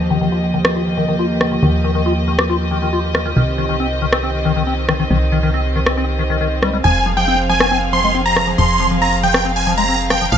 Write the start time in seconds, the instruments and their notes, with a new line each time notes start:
Already playing: analog synth bass D#2, string section F3 A#3 G4 D#5
0.10 acid bass D#3
0.21 acid bass D#3
0.32 acid bass F4
0.54 acid bass D#3
0.65 acid bass G4, cross-stick
0.76 acid bass F4
0.97 acid bass D#3
1.08 acid bass D#3
1.19 acid bass F4
1.41 acid bass D#3, cross-stick
1.52 acid bass D#3
1.62 analog synth bass D#2, acid bass D#3
1.84 acid bass D#3
1.95 acid bass D#3
2.06 acid bass F4
2.28 acid bass D#3
2.39 acid bass G4, cross-stick
2.49 acid bass F4
2.71 acid bass D#3
2.82 acid bass D#3
2.93 acid bass F4
3.15 acid bass D#3, cross-stick
3.25 acid bass D#3
3.36 analog synth bass C2, string section D#3 C4, acid bass D#3
3.58 acid bass D#3
3.69 acid bass D#3
3.80 acid bass C4
4.02 acid bass D#3
4.13 acid bass C4, cross-stick
4.23 acid bass C4
4.45 acid bass D#3
4.56 acid bass D#3
4.67 acid bass C4
4.89 acid bass D#3, cross-stick
4.99 acid bass D#3
5.10 analog synth bass C2, acid bass D#3
5.32 acid bass D#3
5.43 acid bass D#3
5.54 acid bass C4
5.76 acid bass D#3
5.86 acid bass C4, cross-stick
5.97 acid bass C4
6.19 acid bass D#3
6.30 acid bass D#3
6.41 acid bass D#3
6.62 acid bass G3, cross-stick
6.73 acid bass G3
6.84 analog synth bass F1, acid bass F3, string section F3 G#4 F5, supersaw synth G#5
7.06 acid bass F3
7.17 acid bass F3, supersaw synth G5
7.28 acid bass C4
7.49 acid bass F3, supersaw synth G#5
7.60 acid bass C4, cross-stick
7.71 acid bass C4
7.93 acid bass F3, supersaw synth C6
8.04 acid bass G#3
8.15 acid bass C4
8.26 supersaw synth A#5
8.36 acid bass F3, cross-stick
8.47 acid bass F3
8.58 analog synth bass F1, acid bass F3, supersaw synth C6
8.80 acid bass F3
8.91 acid bass F3
9.02 acid bass C4, supersaw synth A#5
9.23 acid bass F3, supersaw synth G5
9.34 acid bass C4, cross-stick
9.45 acid bass C4
9.56 supersaw synth G#5
9.67 acid bass F3
9.78 acid bass G#3, supersaw synth A#5
9.89 acid bass C4
10.10 acid bass F3, supersaw synth G5, cross-stick
10.21 acid bass F3
10.32 analog synth bass A#1, acid bass F3, string section C#4 A#4, supersaw synth F5